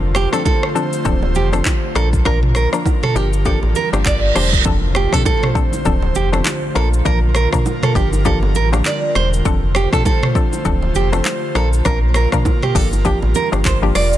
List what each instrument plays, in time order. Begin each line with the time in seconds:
Already playing: sub bass F1, analog synth pad D3 A3 F4 C5
0.15 nylon-string guitar G4, cross-stick, shaker
0.32 synth pluck F3 C4 D4 A4, nylon-string guitar A4, cross-stick, shaker
0.45 nylon-string guitar A4, kick, high bongo, shaker
0.63 cross-stick
0.75 synth pluck F3 C4 D4 A4, low bongo, shaker
0.93 shaker
1.05 sub bass D1, synth pluck F3 C4 D4 A4, kick, low conga, shaker
1.23 low bongo
1.35 sub bass F1, nylon-string guitar G4, low conga, shaker
1.53 synth pluck F3 C4 D4 A4, cross-stick, low bongo, shaker
1.65 kick, clap, high bongo, shaker
1.95 sub bass A#1, synth pluck F3 A#3 D4 A#4, analog synth pad A#3 A#4, nylon-string guitar A4, cross-stick, shaker
2.13 kick, shaker
2.25 sub bass A#1, synth pluck F3 A#3 D4 A#4, nylon-string guitar A#4, kick, cross-stick, low conga, shaker
2.43 mid tom
2.55 nylon-string guitar A#4, cross-stick, shaker
2.73 synth pluck F3 A#3 D4 A#4, cross-stick, shaker
2.86 kick, high bongo, shaker
3.03 nylon-string guitar A4, cross-stick, mid tom
3.15 sub bass G1, synth pluck F3 A#3 D4 G4, analog synth pad G3, nylon-string guitar G4, low bongo, shaker
3.33 shaker
3.45 synth pluck F3 A#3 D4 G4, nylon-string guitar A4, kick, reverse cymbal, low conga, shaker
3.63 sub bass A1, low bongo
3.75 nylon-string guitar A#4, low conga, shaker
3.93 sub bass G1, synth pluck F3 A#3 D4 G4, cross-stick, low bongo, shaker
4.05 sub bass G1, nylon-string guitar D5, kick, clap, high bongo, shaker
4.35 sub bass E1, synth pluck F3 A#3 D4 G4, nylon-string guitar C5, cross-stick, open hi-hat, shaker
4.53 kick, shaker
4.65 sub bass F1, analog synth pad D3 A3 F4 C5, synth pluck F3 C4 D4 A4, kick, impact, low conga, shaker
4.95 nylon-string guitar G4, cross-stick, shaker
5.13 synth pluck F3 C4 D4 A4, nylon-string guitar A4, kick, cross-stick, mid tom, shaker
5.25 nylon-string guitar A4, kick, high bongo, shaker
5.43 cross-stick, mid tom
5.55 synth pluck F3 C4 D4 A4, kick, shaker
5.73 high bongo, shaker
5.85 sub bass D1, synth pluck F3 C4 D4 A4, analog synth pad A3 F4, kick, low conga, shaker
6.02 low bongo
6.15 sub bass F1, nylon-string guitar G4, low conga, shaker
6.32 synth pluck F3 C4 D4 A4, cross-stick, low bongo, shaker
6.45 clap, high bongo, shaker
6.75 sub bass A#1, synth pluck F3 A#3 D4 A#4, analog synth pad A#3 A#4, nylon-string guitar A4, cross-stick, shaker
6.94 shaker
7.05 sub bass A#1, synth pluck F3 A#3 D4 A#4, nylon-string guitar A#4, kick, low conga, shaker
7.35 nylon-string guitar A#4, cross-stick, shaker
7.52 synth pluck F3 A#3 D4 A#4, kick, cross-stick, mid tom, shaker
7.66 high bongo, shaker
7.83 nylon-string guitar A4, cross-stick, mid tom
7.95 sub bass G1, synth pluck F3 A#3 D4 G4, analog synth pad G3, nylon-string guitar G4, kick, shaker
8.13 high bongo, shaker
8.25 synth pluck F3 A#3 D4 G4, nylon-string guitar A4, kick, low conga, shaker
8.43 low bongo
8.55 sub bass A1, nylon-string guitar A#4, low conga, shaker
8.72 synth pluck F3 A#3 D4 G4, cross-stick, low bongo, shaker
8.85 nylon-string guitar D5, clap, high bongo, shaker
9.15 sub bass E1, nylon-string guitar C5, cross-stick, shaker
9.33 shaker
9.45 sub bass F1, synth pluck F3 C4 D4 A4, analog synth pad A3 F4 C5, kick, low conga, shaker
9.75 nylon-string guitar G4, cross-stick, shaker
9.93 synth pluck F3 C4 D4 A4, nylon-string guitar A4, kick, cross-stick, mid tom, shaker
10.05 nylon-string guitar A4, kick, high bongo, shaker
10.23 cross-stick, mid tom
10.35 synth pluck F3 C4 D4 A4, kick, shaker
10.53 high bongo, shaker
10.65 sub bass D1, synth pluck F3 C4 D4 A4, analog synth pad C5, kick, low conga, shaker
10.82 low bongo
10.95 sub bass F1, nylon-string guitar G4, low conga, shaker
11.12 synth pluck F3 C4 D4 A4, cross-stick, low bongo, shaker
11.25 clap, high bongo, shaker
11.55 sub bass A#1, synth pluck F3 A#3 D4 A#4, analog synth pad A#3 A#4, nylon-string guitar A4, cross-stick, shaker
11.73 shaker
11.85 sub bass A#1, synth pluck F3 A#3 D4 A#4, nylon-string guitar A#4, kick, cross-stick, low conga, shaker
12.14 nylon-string guitar A#4, cross-stick, shaker
12.32 synth pluck F3 A#3 D4 A#4, kick, cross-stick, mid tom, shaker
12.45 kick, high bongo, shaker
12.62 nylon-string guitar G4, cross-stick, mid tom
12.75 sub bass G1, synth pluck F3 A#3 D4 G4, analog synth pad G3, nylon-string guitar A4, kick, open hi-hat, shaker
12.93 high bongo, shaker
13.05 synth pluck F3 A#3 D4 G4, nylon-string guitar G4, kick, low conga, shaker
13.22 sub bass A1, low bongo
13.35 nylon-string guitar A#4, low conga, shaker
13.52 sub bass G1, synth pluck F3 A#3 D4 G4, cross-stick, low bongo, shaker
13.65 sub bass G1, nylon-string guitar C5, kick, clap, high bongo, shaker
13.82 synth pluck F3 A#3 D4 G4
13.95 sub bass E1, nylon-string guitar D5, cross-stick, open hi-hat, shaker
14.13 shaker